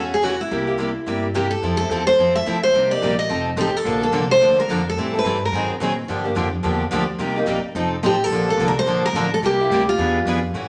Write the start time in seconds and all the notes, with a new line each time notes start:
Already playing: E2 C#3 E3 A3 C#4 F#4 A4
0.14 G#4
0.22 C#3 E3 A3 C#4 F#4 A4
0.41 E4
0.51 C2 C3 G3 A#3 E4 G4
0.67 A#3 E4 G4
0.78 C3 G3 A#3 E4 G4
1.06 G2 C3 G3 A#3 E4 G4
1.34 C3 G3 A#3 E4 G4
1.51 A4
1.62 F2 F3 C4 E4 A4
1.77 A4
1.81 C4 E4
1.89 E2 F3 C4 E4 A4
2.07 C5
2.18 F2 F3 C4 E4 A4
2.36 E5
2.46 D2 F3 C4 E4 A4
2.63 C5
2.73 C2 C3 G3 A#3 D#4 G4
2.91 A#3 D#4 G4 D5
3.01 A#1 C3 G3 A#3 D#4 G4
3.19 D#5
3.29 F1 F3 C4 D#4 A4
3.56 A1 F3 C4 D#4 A4
3.61 G4
3.74 A4, muted upright bass stroke
3.85 A#1 D3 F3 A#3 D4 A4
4.01 A#3 D4 A4
4.12 C2 D3 F3 A#3 D4 A4
4.31 C5
4.41 D2 D3 F3 A#3 D4 A4
4.58 A#4, muted upright bass stroke
4.68 F2 D3 F3 A#3 D4 A4
4.90 A4
4.97 A2 E3 G3 C4 E4 A4
5.14 C4 E4 A4
5.19 B4
5.24 G2 E3 G3 C4 E4 A4
5.45 A#4
5.52 G#2 D#3 F#3 C4 D#4 G#4
5.69 muted upright bass stroke
5.80 A#2 D#3 F#3 C4 D#4 G#4
6.09 G2 D3 F3 A#3 D4 G4
6.24 A#3 D4 G4
6.35 F2 D3 F3 A#3 D4 G4
6.63 E2 D3 F3 A#3 D4 G4
6.91 D2 D3 F3 A#3 D4 G4
7.18 C2 C3 G3 A#3 D#4 G4
7.36 A#3 D#4 G4
7.47 A#1 C3 G3 A#3 D#4 G4
7.64 muted upright bass stroke
7.75 F1 F3 C4 D#4 A4
8.03 A1 F3 C4 D#4 G4 A4
8.24 A4
8.30 A#1 D3 F3 A#3 D4 A4
8.48 A#3 D4 A4
8.57 C2 D3 F3 A#3 D4 A4
8.68 A#4
8.79 C5
8.86 A#1 D3 F3 A#3 D4 A4
9.05 A#4
9.13 A1 D3 F3 A#3 D4 A4
9.34 A4
9.41 C2 C3 G3 A#3 E4 G4
9.46 G4
9.60 A#3 E4 G4
9.70 D2 C3 G3 A#3 E4 G4
9.89 F4
9.98 E2 E3 B3 D4 G#4 B4
10.25 F2 E3 B3 D4 G#4 B4
10.54 A2 C#3 E3 A3 C#4 F#4